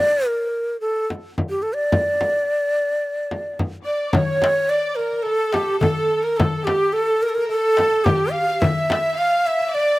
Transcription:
Already playing: ney D5
0.26 ney A#4
0.81 ney A4
1.10 frame drum
1.38 frame drum
1.50 ney G4
1.62 ney A4
1.75 ney D5
1.92 frame drum
2.21 frame drum
3.31 frame drum
3.59 frame drum
3.86 ney D5, violin section D5, pan flute D5
4.13 ney C#5, pan flute C#5, violin section C#5, frame drum, darbuka dum
4.42 darbuka tek, frame drum
4.69 ney D5, pan flute D5, violin section D5, darbuka ka
4.96 ney A#4, violin section A#4, darbuka ka
5.13 darbuka ka
5.23 ney A4, pan flute A4, violin section A4, darbuka ka
5.53 ney G4, pan flute G4, darbuka tek, frame drum
5.68 darbuka ka
5.80 ney A4, violin section A4, pan flute A4, darbuka dum, frame drum
6.12 darbuka ka
6.23 ney A#4, violin section A#4, pan flute A#4
6.37 ney A4, violin section A4, pan flute A4, darbuka dum, frame drum
6.65 ney G4, pan flute G4, violin section G4, darbuka tek, frame drum
6.93 ney A4, pan flute A4, darbuka ka
6.97 violin section A4
7.22 ney A#4, violin section A#4, darbuka ka
7.29 ney A4
7.35 ney A#4, darbuka ka
7.40 violin section A#4
7.49 ney A4, pan flute A4, darbuka ka
7.54 violin section A4
7.77 darbuka tek, frame drum
7.93 darbuka ka
8.04 ney G4, pan flute G4, violin section G4, frame drum, darbuka dum
8.15 pan flute G4
8.23 pan flute G4
8.32 pan flute G4, ney F5, violin section F5
8.36 darbuka ka
8.40 pan flute G4
8.48 pan flute G4
8.53 pan flute G4
8.61 ney E5, violin section E5, pan flute E5, frame drum, darbuka dum
8.90 darbuka tek, frame drum
9.17 violin section F5, ney F5, pan flute F5, darbuka ka
9.47 ney E5, violin section E5, darbuka ka
9.61 darbuka ka
9.74 violin section D5, ney D5, pan flute D5, darbuka ka

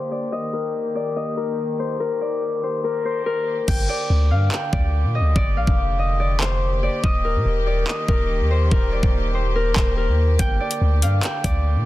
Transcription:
Already playing: string section D3 A#3 G4, harp C5 D5 F5
0.11 harp D5
0.32 string section D#3, harp D#5
0.53 harp A#4
0.95 harp D5
1.16 harp D#5
1.37 harp A#4
1.79 harp C5
2.00 harp A#4
2.21 harp D5
2.63 harp C5
2.84 harp A#4
3.05 harp C5
3.26 harp A#4
3.68 808-style bass G1, string section D3 A#3 G4, harp G5, kick, crash
3.89 harp D5
4.10 808-style bass D2
4.31 808-style bass G2, harp F5
4.52 harp G5, clap
4.73 808-style bass D2, harp D5, kick
5.04 808-style bass A#2
5.15 harp D#5
5.20 808-style bass D2
5.36 808-style bass G1, harp D5, kick
5.57 808-style bass A#1, harp F5
5.67 808-style bass F1, kick
5.99 harp D#5
6.20 harp D5
6.41 harp C5, clap
6.83 harp D5
7.04 808-style bass D#1, string section D#3, harp D#5, kick
7.25 harp A#4
7.35 808-style bass A#2
7.46 808-style bass D#1
7.67 harp D5
7.87 harp D#5, clap
8.08 808-style bass D#1, harp A#4, kick
8.40 808-style bass D#2
8.51 harp C5
8.71 808-style bass D#1, harp A#4, kick
8.92 harp D5
9.03 808-style bass D#1, kick
9.34 harp C5
9.55 harp A#4
9.76 808-style bass D#1, harp C5, kick, clap
9.97 harp A#4
10.08 808-style bass D#2
10.39 808-style bass G1, string section D3, harp G5, kick, closed hi-hat
10.60 harp D5
10.71 closed hi-hat
10.81 808-style bass D2
11.02 808-style bass G2, harp F5, closed hi-hat
11.23 harp G5, clap, closed hi-hat
11.44 808-style bass D2, harp D5, kick, closed hi-hat
11.76 808-style bass A#2

